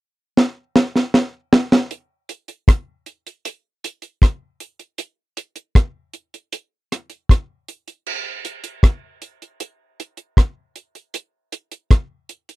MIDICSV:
0, 0, Header, 1, 2, 480
1, 0, Start_track
1, 0, Tempo, 769231
1, 1191, Time_signature, 4, 2, 24, 8
1, 7838, End_track
2, 0, Start_track
2, 0, Title_t, "Drums"
2, 233, Note_on_c, 9, 38, 63
2, 296, Note_off_c, 9, 38, 0
2, 472, Note_on_c, 9, 38, 76
2, 534, Note_off_c, 9, 38, 0
2, 596, Note_on_c, 9, 38, 61
2, 659, Note_off_c, 9, 38, 0
2, 712, Note_on_c, 9, 38, 74
2, 774, Note_off_c, 9, 38, 0
2, 952, Note_on_c, 9, 38, 99
2, 1015, Note_off_c, 9, 38, 0
2, 1074, Note_on_c, 9, 38, 89
2, 1136, Note_off_c, 9, 38, 0
2, 1191, Note_on_c, 9, 42, 82
2, 1253, Note_off_c, 9, 42, 0
2, 1430, Note_on_c, 9, 42, 75
2, 1492, Note_off_c, 9, 42, 0
2, 1548, Note_on_c, 9, 42, 53
2, 1611, Note_off_c, 9, 42, 0
2, 1671, Note_on_c, 9, 36, 110
2, 1675, Note_on_c, 9, 42, 92
2, 1676, Note_on_c, 9, 37, 109
2, 1733, Note_off_c, 9, 36, 0
2, 1738, Note_off_c, 9, 37, 0
2, 1738, Note_off_c, 9, 42, 0
2, 1911, Note_on_c, 9, 42, 59
2, 1973, Note_off_c, 9, 42, 0
2, 2038, Note_on_c, 9, 42, 53
2, 2100, Note_off_c, 9, 42, 0
2, 2154, Note_on_c, 9, 42, 88
2, 2216, Note_off_c, 9, 42, 0
2, 2398, Note_on_c, 9, 42, 82
2, 2460, Note_off_c, 9, 42, 0
2, 2508, Note_on_c, 9, 42, 47
2, 2571, Note_off_c, 9, 42, 0
2, 2631, Note_on_c, 9, 36, 102
2, 2638, Note_on_c, 9, 37, 100
2, 2640, Note_on_c, 9, 42, 75
2, 2694, Note_off_c, 9, 36, 0
2, 2701, Note_off_c, 9, 37, 0
2, 2702, Note_off_c, 9, 42, 0
2, 2872, Note_on_c, 9, 42, 66
2, 2935, Note_off_c, 9, 42, 0
2, 2992, Note_on_c, 9, 42, 45
2, 3054, Note_off_c, 9, 42, 0
2, 3109, Note_on_c, 9, 42, 86
2, 3171, Note_off_c, 9, 42, 0
2, 3352, Note_on_c, 9, 42, 82
2, 3414, Note_off_c, 9, 42, 0
2, 3468, Note_on_c, 9, 42, 52
2, 3530, Note_off_c, 9, 42, 0
2, 3590, Note_on_c, 9, 36, 108
2, 3593, Note_on_c, 9, 42, 83
2, 3594, Note_on_c, 9, 37, 105
2, 3652, Note_off_c, 9, 36, 0
2, 3656, Note_off_c, 9, 37, 0
2, 3656, Note_off_c, 9, 42, 0
2, 3829, Note_on_c, 9, 42, 62
2, 3891, Note_off_c, 9, 42, 0
2, 3957, Note_on_c, 9, 42, 51
2, 4019, Note_off_c, 9, 42, 0
2, 4071, Note_on_c, 9, 42, 84
2, 4134, Note_off_c, 9, 42, 0
2, 4319, Note_on_c, 9, 37, 65
2, 4320, Note_on_c, 9, 42, 81
2, 4382, Note_off_c, 9, 37, 0
2, 4383, Note_off_c, 9, 42, 0
2, 4429, Note_on_c, 9, 42, 45
2, 4491, Note_off_c, 9, 42, 0
2, 4552, Note_on_c, 9, 36, 103
2, 4561, Note_on_c, 9, 37, 102
2, 4562, Note_on_c, 9, 42, 80
2, 4614, Note_off_c, 9, 36, 0
2, 4623, Note_off_c, 9, 37, 0
2, 4625, Note_off_c, 9, 42, 0
2, 4795, Note_on_c, 9, 42, 67
2, 4858, Note_off_c, 9, 42, 0
2, 4915, Note_on_c, 9, 42, 48
2, 4977, Note_off_c, 9, 42, 0
2, 5032, Note_on_c, 9, 49, 84
2, 5095, Note_off_c, 9, 49, 0
2, 5271, Note_on_c, 9, 42, 76
2, 5334, Note_off_c, 9, 42, 0
2, 5389, Note_on_c, 9, 42, 54
2, 5452, Note_off_c, 9, 42, 0
2, 5510, Note_on_c, 9, 36, 110
2, 5514, Note_on_c, 9, 37, 109
2, 5514, Note_on_c, 9, 42, 85
2, 5572, Note_off_c, 9, 36, 0
2, 5576, Note_off_c, 9, 42, 0
2, 5577, Note_off_c, 9, 37, 0
2, 5751, Note_on_c, 9, 42, 62
2, 5814, Note_off_c, 9, 42, 0
2, 5878, Note_on_c, 9, 42, 51
2, 5941, Note_off_c, 9, 42, 0
2, 5991, Note_on_c, 9, 42, 87
2, 6054, Note_off_c, 9, 42, 0
2, 6239, Note_on_c, 9, 42, 77
2, 6301, Note_off_c, 9, 42, 0
2, 6348, Note_on_c, 9, 42, 45
2, 6410, Note_off_c, 9, 42, 0
2, 6471, Note_on_c, 9, 36, 90
2, 6476, Note_on_c, 9, 37, 102
2, 6478, Note_on_c, 9, 42, 78
2, 6533, Note_off_c, 9, 36, 0
2, 6539, Note_off_c, 9, 37, 0
2, 6540, Note_off_c, 9, 42, 0
2, 6712, Note_on_c, 9, 42, 60
2, 6774, Note_off_c, 9, 42, 0
2, 6834, Note_on_c, 9, 42, 46
2, 6896, Note_off_c, 9, 42, 0
2, 6951, Note_on_c, 9, 42, 89
2, 7014, Note_off_c, 9, 42, 0
2, 7191, Note_on_c, 9, 42, 73
2, 7253, Note_off_c, 9, 42, 0
2, 7310, Note_on_c, 9, 42, 52
2, 7373, Note_off_c, 9, 42, 0
2, 7429, Note_on_c, 9, 36, 106
2, 7431, Note_on_c, 9, 42, 86
2, 7432, Note_on_c, 9, 37, 105
2, 7492, Note_off_c, 9, 36, 0
2, 7494, Note_off_c, 9, 37, 0
2, 7494, Note_off_c, 9, 42, 0
2, 7670, Note_on_c, 9, 42, 61
2, 7733, Note_off_c, 9, 42, 0
2, 7794, Note_on_c, 9, 42, 48
2, 7838, Note_off_c, 9, 42, 0
2, 7838, End_track
0, 0, End_of_file